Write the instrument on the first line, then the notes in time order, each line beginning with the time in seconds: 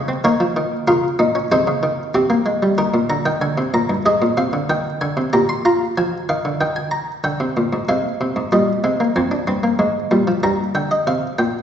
harpsichord
Already playing: C#3 G#4 D#5
0.08 C4
0.24 D#3 A#3 A#4 C#5
0.40 F3
0.56 D#3
0.88 C#3 F4 A#4
1.19 A#2 D#4
1.35 C#4
1.52 C3 D#4 G#4 C5
1.67 C#3
1.83 D#3
2.14 C3 C4 G4
2.30 A#3
2.46 G#3
2.63 G3
2.78 D#3 A#4
2.94 A#2
3.10 D3 A#5
3.26 D#3 G5
3.41 D3 G#5
3.58 C3
3.74 A#2 A#5
3.90 G2
4.06 G#2 G#4 D#5
4.22 A#2
4.37 C3 F5
4.53 D3
4.70 D#3 G5
5.01 D3 G#5
5.17 C3
5.33 A#2 G4 A#5
5.49 C6
5.65 F4 A#5
5.97 F3 G#5
6.29 D#3 F5
6.45 D3
6.61 D#3 G5
6.76 G#5
6.91 A#5
7.24 D3 G5
7.40 C3
7.57 A#2
7.73 G#2
7.89 C3 G#3 F5
8.21 C3
8.36 G#2
8.52 A#2 G3 D#5
8.84 C3 G#3
9.00 A#3
9.16 F2 C4 G#5
9.31 D4
9.47 G2 C4
9.63 A#3
9.79 G#2 G#3
10.11 A#2 G3
10.27 F3
10.43 G2 G3 A#5
10.75 D3 G5
10.91 D#5
11.07 C3 F5
11.38 A#2 G5